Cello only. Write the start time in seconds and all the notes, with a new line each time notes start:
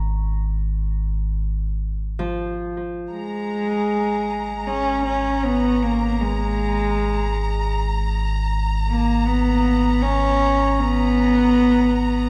3.11 G#3
4.67 C#4
5.05 C#4
5.44 B3
5.82 A#3
6.21 G#3
8.88 A#3
9.26 B3
10.02 C#4
10.79 B3